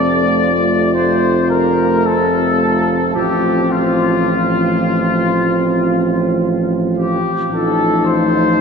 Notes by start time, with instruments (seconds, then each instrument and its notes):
Already playing: tuba F1, trombone A3, euphonium C4, french horn section F4, trumpet section D5
0.93 trumpet section C5
1.49 trumpet section A#4
2.05 trumpet section A4
3.15 tuba A1, trombone F3, euphonium C4, french horn section F4, trumpet section G4
3.70 trumpet section F4
6.97 trumpet section G4
7.49 tuba A1, trombone F3, euphonium D#4, french horn section F4, trumpet section A4
8.06 trumpet section C5